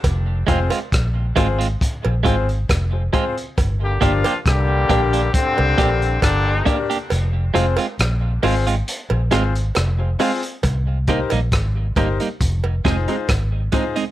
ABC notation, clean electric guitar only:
X:1
M:4/4
L:1/16
Q:1/4=68
K:Fdor
V:1 name="Clean electric guitar"
z2 [A,CF] [A,CF] z2 [A,CF] [A,CF] z2 [A,CF] z3 [A,CF] z | z2 [B,DG] [B,DG] z2 [B,DG] [B,DG] z2 [B,DG] z3 [B,DG] [B,DG] | z2 [A,CF] [A,CF] z2 [A,CF] [A,CF] z2 [A,CF] z3 [A,CF] z | z2 [G,B,E] [G,B,E] z2 [G,B,E] [G,B,E] z2 [A,CE] [A,CE] z2 [A,CE] [A,CE] |]